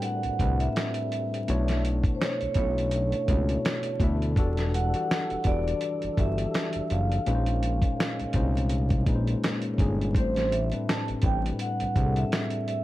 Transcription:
Already playing: A2 G3 A3 C4 D4 F#4 A#4 B4 C5
0.02 F#5, closed hi-hat
0.23 C2, closed hi-hat
0.39 C2 A2 G3 C4 D4 B4, kick, closed hi-hat
0.60 E5, closed hi-hat
0.76 snare, closed hi-hat
0.94 closed hi-hat
1.12 E5, closed hi-hat
1.34 closed hi-hat
1.47 B1 B2 A3 B3 D4 E4 C#5, closed hi-hat
1.68 snare, closed hi-hat
1.85 closed hi-hat
2.04 kick, closed hi-hat
2.15 C5
2.21 C#5, snare, closed hi-hat
2.41 B1, closed hi-hat
2.54 B1 B2 A3 C#4 E4 C#5, kick, closed hi-hat
2.59 E5
2.64 D4
2.78 closed hi-hat
2.91 closed hi-hat
3.12 closed hi-hat
3.28 C#2 B2 A3 D4 E4 F#4, kick, closed hi-hat
3.49 closed hi-hat
3.65 snare, closed hi-hat
3.83 closed hi-hat
4.00 D2 B2 A3 D4 E4 E5, kick, closed hi-hat
4.22 closed hi-hat
4.36 E1 E3 G3 D4 F#4 G4 A4, kick, closed hi-hat
4.57 snare, closed hi-hat
4.74 F#5, closed hi-hat
4.94 E3 D4 F#4 G4 A4, closed hi-hat
5.11 snare, closed hi-hat
5.30 E1, closed hi-hat
5.44 E1 E3 D4 F#4 G4 B4 D5, kick, closed hi-hat
5.68 closed hi-hat
5.81 closed hi-hat
6.02 G1, closed hi-hat
6.17 G1 E3 D4 F#4 G4 A4 E5, kick, closed hi-hat
6.38 closed hi-hat
6.54 snare, closed hi-hat
6.73 F#1, closed hi-hat
6.90 F#1 F5, closed hi-hat
7.12 closed hi-hat
7.26 A#1 A#2 G#3 A#3 C#4 D#4 B4, closed hi-hat
7.35 C5
7.46 closed hi-hat
7.63 closed hi-hat
7.82 kick, closed hi-hat
8.00 snare, closed hi-hat
8.19 C2, closed hi-hat
8.33 C2 A#2 G#3 C#4 D#4 C5, kick, closed hi-hat
8.57 closed hi-hat
8.69 closed hi-hat
8.90 kick, closed hi-hat
9.06 A#1 A#2 G#3 C#4 D#4 B4, kick, closed hi-hat
9.15 C5
9.27 closed hi-hat
9.44 snare, closed hi-hat
9.62 closed hi-hat
9.78 G1 A#2 G#3 C#4 D#4 G#4, kick, closed hi-hat
10.01 closed hi-hat
10.15 A1 A2 G3 A3 C4 D4 C5, kick, closed hi-hat
10.36 snare, closed hi-hat
10.52 E5, closed hi-hat
10.72 A2 G3 C4 D4 B4, closed hi-hat
10.89 A5, snare, closed hi-hat
11.08 A1, closed hi-hat
11.22 A1 A2 G3 C4 D4 G5, kick, closed hi-hat
11.26 B4
11.46 closed hi-hat
11.59 F#5, closed hi-hat
11.80 C2, closed hi-hat
11.95 C2 A2 G3 C4 D4 G#4, kick, closed hi-hat
12.04 A4
12.16 E5, closed hi-hat
12.32 snare, closed hi-hat
12.50 closed hi-hat
12.68 E5, closed hi-hat

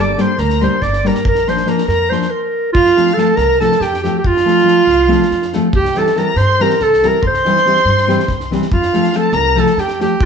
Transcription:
Already playing: G1 G3 A#3
0.00 D4 G4 A#4 D5 D6
0.17 G3 A#3 D4 G4 A#4 C6, snare
0.21 C5
0.38 D2 A#4 A#5, snare
0.50 snare
0.61 G3 A#3 D4 G4 A#4 C5 C6, snare
0.82 G1 D5 D6, kick, snare
0.93 snare
1.04 G3 A#3 D4 G4 A#4 A#5, snare
1.15 snare
1.25 A#1 A#4 A#5, kick
1.35 snare
1.47 F3 A#3 D4 F4 A#4 C5 C6, snare
1.57 snare
1.65 F3 A#3 D4 F4 A#4 A#5, snare
1.78 snare
1.87 F2 A#4 A#5, snare
2.10 F3 A#3 D4 F4 A#4 C5 C6, snare
2.21 snare
2.31 A#4
2.73 F2 F4 F5, kick
2.86 snare
2.96 F3 A3 C4 F4 A4, snare
3.07 snare
3.14 F3 A3 C4 A4
3.18 F4 A4 A5, snare
3.36 C2 A#4 A#5, snare
3.60 F3 A3 C4 F4 A4 A5, snare
3.72 snare
3.80 F2 G4 G5, snare
3.94 snare
4.03 F3 A3 C4 F4 G4 A4 G5, snare
4.17 G4 G5
4.24 F2 F4 F5, kick
4.37 snare
4.45 F3 A3 C4 F4 A4, snare
4.58 snare
4.64 F3 A3 C4 F4 A4, snare
4.87 C2, snare
5.08 F3 A3 C4 F4 A4, snare
5.22 snare
5.31 F2, snare
5.42 snare
5.53 F3 A3 C4 F4 A4, snare
5.73 C2 G4, kick
5.78 G5
5.85 snare
5.94 E3 G3 C4 E4 G4 A4, snare
5.99 A5
6.06 snare
6.16 E3 G3 C4 E4 G4 A#4 A#5, snare
6.36 G2 C5 C6, snare
6.60 E3 G3 C4 E4 G4 A#4 A#5, snare
6.70 snare
6.80 C2 A4 A5, snare
6.93 snare
7.02 E3 G3 C4 E4 G4 A#5, snare
7.08 A#4
7.23 C2 C6, kick
7.27 C5
7.34 snare
7.45 E3 G3 C4 E4 G4, snare
7.56 snare
7.65 E3 G3 C4 E4 G4, snare
7.76 snare
7.85 G2, snare
7.97 snare
8.07 E3 G3 C4 E4 G4, snare
8.19 snare
8.28 C2, kick, snare
8.40 snare
8.51 E3 G3 C4 E4 G4, snare
8.62 snare
8.71 F2 F4 F5, kick
8.82 snare
8.93 F3 A3 C4 F4 A4, snare
9.03 snare
9.12 F3 A3 C4 F4 A4 A5, snare
9.17 A4
9.32 C2 A#4 A#5, snare
9.55 F3 A3 C4 F4 A4 A5, snare
9.60 A4
9.66 snare
9.77 F2 G4 G5, snare
9.88 snare
9.99 F3 A3 C4 F4 G4 A4, snare
10.04 G5
10.20 F2, kick

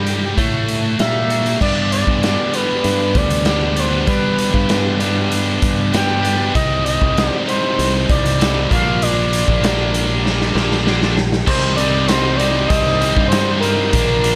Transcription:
Already playing: G2 G3
0.05 G3 C4 D#4 G4, closed hi-hat
0.36 A2 A3 D4 F#4, kick, closed hi-hat
0.68 closed hi-hat
0.99 A#2 A#3 E5, snare, closed hi-hat
1.28 A3 D4 F#4, closed hi-hat
1.46 closed hi-hat
1.60 G2 G3 B3 D4 G4 D5, kick, crash
1.92 D5, closed hi-hat
2.07 G2, kick
2.23 snare, closed hi-hat
2.52 G3 B3 D4 B4, closed hi-hat
2.84 G2, closed hi-hat
3.15 D2 D5, kick, closed hi-hat
3.30 closed hi-hat
3.45 G3 B3 D4, snare, closed hi-hat
3.76 G3 B3 D4 G4 C5, closed hi-hat
4.06 G3 B3 D4 G4 B4, kick, closed hi-hat
4.38 closed hi-hat
4.54 G2, kick
4.69 snare, closed hi-hat
4.99 G3 B3 D4, closed hi-hat
5.32 closed hi-hat
5.62 G2, kick, closed hi-hat
5.92 G3 B3 D4 G5, snare, closed hi-hat
6.22 G3 B3 D4 G4, closed hi-hat
6.54 C2 G3 C4 D#4 G4 D#5, kick, closed hi-hat
6.85 D#5, closed hi-hat
7.01 C2, kick
7.17 snare, closed hi-hat
7.26 D5
7.46 G3 C4 D#4 C5, closed hi-hat
7.79 C2, closed hi-hat
8.09 C2 D5, kick, closed hi-hat
8.26 closed hi-hat
8.39 G3 C4 D#4, snare, closed hi-hat
8.69 A#1 F3 A#3 D4 F5, kick, closed hi-hat
9.02 D5, closed hi-hat
9.33 closed hi-hat
9.48 A#1, kick
9.62 F3 A#3 D4, snare, closed hi-hat
9.94 closed hi-hat
10.26 snare
10.41 snare
10.54 A#1 F3 A#3 D4, snare
10.72 snare
10.85 F3 A#3 D4, snare
11.02 snare
11.17 snare
11.32 snare
11.47 C2 G3 C4 D#4 C5 G5 D6, kick, crash
11.76 G3 C4 D#4 D5, closed hi-hat
12.07 G3 C4 D#4 C5, snare, closed hi-hat
12.37 G3 C4 D5, closed hi-hat
12.41 D#4
12.67 C2 G3 C4 D#5, kick, closed hi-hat
12.72 D#4
12.87 snare
13.01 G3 C4 D#4, closed hi-hat
13.17 G2, kick
13.28 G3 C5, closed hi-hat
13.33 C4 D#4, snare
13.60 G3 C4 D#4 A#4, closed hi-hat
13.92 A#1 F3 A#3 D4 A#4 F5, kick, closed hi-hat
14.23 F3 A#3 D4, closed hi-hat

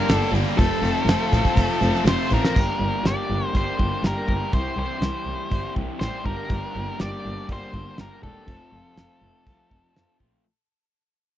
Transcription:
Already playing: D4 G4 A#4
0.08 G1 G2 D3 G3 A#3 D4 A4, snare, open hi-hat, shaker
0.12 G4
0.22 shaker
0.32 G1 G2 D3 G3 A#3 D4, open hi-hat, shaker
0.47 shaker
0.57 F1 F2 C3 F3 A3 C4 F4 A4, kick, open hi-hat, shaker
0.72 shaker
0.81 F1 F2 C3 A3 C4 F4, open hi-hat, shaker
0.85 F3
0.97 shaker
1.06 F1 F2 C3 F3 A3 C4, snare, open hi-hat, shaker
1.10 F4
1.22 shaker
1.32 A1 F2 C3 F3 A3 C4 F4, kick, open hi-hat, shaker
1.45 kick, shaker
1.56 F1 F2 C3 F3 A3 C4, kick, open hi-hat, shaker
1.69 shaker
1.80 F1 F2 C3 F3 A3 C4 F4, open hi-hat, shaker
1.94 snare, shaker
2.05 F1 F2 C3 F3 A3 C4 C5, snare, open hi-hat, shaker
2.09 F4
2.18 shaker
2.30 A1 F2 C3 F3 A3 C4, kick, shaker
2.34 A#4
2.43 snare, shaker
2.55 G1 G3 A#3 D4 G4, kick, crash
2.79 G1 D4 G4
2.83 A#3
3.04 G1 G3 A#3 D4 G4 D5, snare, open hi-hat
3.30 G1
3.53 G1 G3 A#3 D4 G4 C5, kick, open hi-hat
3.79 G1 A#3 D4 G4, kick
4.02 G1 G3 A#3 D4 G4, snare, open hi-hat
4.06 A#4
4.27 G1 A#3 D4 G4, kick
4.52 C2 C3 E3 G3 E4 G4 C5, kick, open hi-hat
4.76 C2 G3 E4 G4 C5
5.00 C2 E3 G3 E4 G4, snare, open hi-hat
5.25 C2
5.49 G1 C3 E3 G3 E4 G4, kick, open hi-hat
5.75 C2 G3 E4 G4, kick
6.00 A1 E3 G3 E4 G4 C5, snare, open hi-hat
6.25 G1 G2 D3 G3 A#3 D4 G4 A#4, kick
6.49 G1 G2 D3 G3 A#3 D4, kick, open hi-hat
6.54 G4
6.74 G1 G3 A#3 D4 G4
6.98 G1 G3 A#3 D4 G4 D5, snare, open hi-hat
7.26 G1
7.48 G1 G2 D3 G3 A#3 D4, kick, open hi-hat
7.52 G4 C5
7.73 G1 G3 A#3 D4 G4, kick
7.97 G1 G3 A#3 D4, snare, open hi-hat
8.01 G4 A#4
8.21 E1 G3 A#3 D4 G4 A4, kick
8.46 F1 F2 C3 F3 A3 C4 F4, kick, open hi-hat
8.71 F1 F3 A3 C4 F4
8.95 F1 F3 A3 C4, snare, open hi-hat
8.99 F4
9.22 F1
9.45 C2 F2 C3 F3 A3 C4 F4, kick, open hi-hat
9.70 F1 F3 A3 C4 F4, kick
9.94 F2 F3 A3 C4 F4, snare, open hi-hat
10.19 A#1 F3 A3 C4 F4, kick

